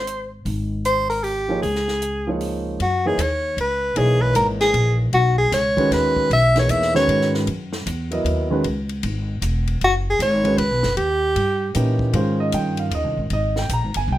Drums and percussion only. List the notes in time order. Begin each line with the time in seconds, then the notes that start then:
0.07 closed hi-hat
0.46 open hi-hat
0.85 closed hi-hat
1.10 open hi-hat
1.24 open hi-hat
1.63 open hi-hat
1.75 snare
1.88 snare
2.02 closed hi-hat
2.41 open hi-hat
2.80 ride
3.19 hi-hat pedal, ride
3.58 ride
3.96 ride
4.35 hi-hat pedal, ride
4.60 snare, ride
4.74 ride
5.13 ride
5.52 snare, hi-hat pedal, ride
5.77 kick, ride
5.92 snare, ride
6.16 kick
6.31 ride
6.55 snare, ride
6.69 hi-hat pedal, ride
6.82 snare
6.95 snare
7.09 ride
7.21 snare
7.34 snare
7.47 ride
7.73 snare
7.87 hi-hat pedal, ride
8.11 ride
8.26 ride
8.64 ride
8.89 ride
9.03 ride
9.42 hi-hat pedal, ride
9.67 ride
9.81 ride
10.20 hi-hat pedal, ride
10.45 ride
10.58 ride
10.83 snare
10.97 ride
11.36 ride
11.75 hi-hat pedal, ride
11.99 kick
12.13 ride
12.52 hi-hat pedal, ride
12.77 ride
12.91 ride
13.30 ride
13.56 snare
13.69 hi-hat pedal, ride
13.94 ride